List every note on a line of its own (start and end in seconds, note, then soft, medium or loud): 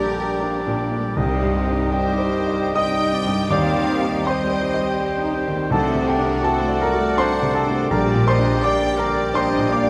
0.00 1.13 A#1 medium
0.00 0.67 A#2 soft
0.00 1.14 G3 medium
0.00 3.33 G3 medium
0.00 0.42 D4 soft
0.00 1.13 D4 medium
0.00 0.18 G4 soft
0.00 0.80 G4 medium
0.00 1.13 G4 medium
0.00 1.19 A4 medium
0.00 0.79 A#4 medium
0.00 0.32 D5 medium
0.00 1.19 D5 soft
0.00 0.75 G5 medium
0.00 1.14 G5 medium
0.00 1.19 A5 medium
0.05 0.23 D3 soft
0.18 0.57 G4 soft
0.23 0.42 G3 soft
0.42 0.60 A#3 soft
0.42 0.82 D4 soft
0.61 0.80 D4 soft
0.67 1.07 A#2 medium
0.80 0.99 A#3 soft
0.92 1.17 D4 soft
0.99 1.18 G3 soft
1.16 3.47 C2 medium
1.16 1.80 C2 medium
1.16 1.80 C3 medium
1.16 1.35 D#3 medium
1.16 1.91 G3 medium
1.16 3.33 D#4 soft
1.16 5.69 G4 medium
1.16 1.93 D#5 medium
1.16 1.91 G5 medium
1.36 1.55 G3 soft
1.42 1.82 G2 soft
1.55 1.73 C4 soft
1.68 2.08 D#4 soft
1.74 1.93 D#4 soft
1.92 2.74 G3 medium
1.92 2.12 C4 soft
1.92 2.77 G4 medium
1.92 2.36 G4 soft
1.92 2.71 C5 medium
1.92 2.74 D#5 soft
1.92 2.71 G5 medium
1.92 2.74 G5 medium
2.12 2.33 G3 soft
2.18 2.64 C5 soft
2.33 2.55 D#3 soft
2.47 2.75 D#5 soft
2.55 2.76 G3 soft
2.74 3.25 G3 medium
2.74 2.95 C4 soft
2.74 3.16 G4 medium
2.74 3.51 D#5 medium
2.74 3.16 D#5 medium
2.74 3.48 D#5 medium
2.74 3.52 G5 medium
2.74 3.25 G5 medium
2.74 3.47 D#6 medium
2.95 3.14 D#4 soft
3.01 3.41 D#4 soft
3.14 3.33 C4 medium
3.14 3.51 D5 soft
3.25 3.51 G2 soft
3.33 3.50 G3 soft
3.50 5.68 D#2 medium
3.50 4.14 D#2 medium
3.50 3.68 D#3 soft
3.50 4.14 D#3 medium
3.50 5.68 G3 medium
3.50 4.22 G3 medium
3.50 3.68 G3 soft
3.50 5.68 C4 medium
3.50 3.99 C5 medium
3.50 4.28 D5 medium
3.50 4.23 D5 medium
3.50 4.26 F5 medium
3.50 4.23 G5 medium
3.50 4.22 D6 medium
3.69 3.88 G3 soft
3.75 4.16 D#3 soft
3.87 4.07 C4 soft
4.00 4.41 D#4 soft
4.07 4.26 D#4 medium
4.25 5.69 G3 medium
4.25 4.44 C4 medium
4.25 4.65 G4 soft
4.25 5.36 C5 medium
4.25 5.69 C5 soft
4.25 4.48 C5 medium
4.25 5.36 D#5 medium
4.25 5.70 G5 medium
4.25 5.33 C6 medium
4.44 4.63 G3 soft
4.50 4.90 C5 soft
4.64 4.82 D#3 soft
4.74 5.14 D#5 soft
4.82 5.00 G3 soft
4.98 5.18 C4 soft
4.98 5.38 G4 medium
5.19 5.36 D#4 soft
5.23 5.62 D#4 soft
5.36 5.54 C4 medium
5.47 5.72 D#3 soft
5.54 5.72 G3 soft
5.71 7.86 C2 medium
5.71 6.32 C2 medium
5.71 6.32 C3 medium
5.71 5.97 F#3 soft
5.71 5.88 F#3 medium
5.71 5.88 A3 medium
5.71 7.86 A3 medium
5.71 5.97 D4 medium
5.71 7.91 F#4 medium
5.71 6.10 A4 medium
5.71 6.07 A4 medium
5.71 6.05 C5 medium
5.71 9.90 D5 medium
5.71 7.91 F#5 medium
5.71 6.05 A5 medium
5.89 6.08 A3 soft
5.94 6.34 C3 soft
6.07 6.26 C4 soft
6.07 6.45 G4 medium
6.07 6.43 G4 soft
6.07 6.45 A#4 medium
6.07 6.42 G5 medium
6.18 6.58 D4 soft
6.24 6.44 D4 soft
6.43 6.62 C4 medium
6.43 6.83 F#4 medium
6.43 6.80 A4 medium
6.43 6.82 C5 medium
6.43 6.79 A5 medium
6.61 6.81 A3 soft
6.68 7.08 D5 medium
6.81 7.00 F#3 soft
6.81 7.20 A#4 medium
6.81 7.16 A#4 medium
6.81 7.18 D5 medium
6.81 7.16 A#5 medium
6.92 7.32 F#4 medium
6.99 7.18 A3 soft
7.17 7.36 C4 medium
7.17 7.56 D4 medium
7.17 7.56 C5 medium
7.17 7.52 C5 medium
7.17 7.54 F#5 medium
7.17 7.52 C6 medium
7.35 7.54 D4 medium
7.42 7.81 C3 medium
7.53 7.72 C4 medium
7.53 7.92 A4 medium
7.53 7.89 A4 medium
7.53 7.91 C5 medium
7.53 7.88 A5 medium
7.66 7.91 D4 soft
7.70 7.90 A3 medium
7.89 8.51 A#1 medium
7.89 9.90 A#1 medium
7.89 8.51 A#2 medium
7.89 8.07 D3 medium
7.89 8.07 G3 medium
7.89 9.90 G3 medium
7.89 8.17 G3 medium
7.89 8.17 D4 medium
7.89 9.90 G4 medium
7.89 8.28 A#4 medium
7.89 8.26 A#4 medium
7.89 8.26 D5 medium
7.89 9.90 G5 medium
7.89 8.25 A#5 medium
8.08 8.27 G3 soft
8.15 8.53 A#2 medium
8.26 8.44 A#3 medium
8.26 8.64 C5 medium
8.26 8.61 C5 medium
8.26 8.63 D#5 medium
8.26 8.61 C6 medium
8.39 8.77 D4 soft
8.44 8.62 D4 soft
8.62 8.80 A#3 medium
8.62 9.01 G4 medium
8.62 8.99 D5 medium
8.62 8.85 D5 medium
8.62 8.98 G5 medium
8.62 8.97 D6 medium
8.80 8.98 G3 soft
8.87 9.25 D5 medium
8.97 9.16 D3 medium
8.97 9.32 A#4 medium
8.97 9.33 A#4 medium
8.97 9.34 D5 medium
8.97 9.32 A#5 medium
9.10 9.49 G4 soft
9.16 9.34 G3 soft
9.33 9.52 A#3 soft
9.33 9.73 D4 medium
9.33 9.71 C5 medium
9.33 9.69 C5 medium
9.33 9.71 D#5 medium
9.33 9.69 C6 medium
9.53 9.71 D4 soft
9.58 9.90 A#2 medium
9.70 9.89 A#3 medium
9.70 9.90 D5 medium
9.70 9.90 F5 medium
9.70 9.90 D6 medium
9.84 9.90 D4 soft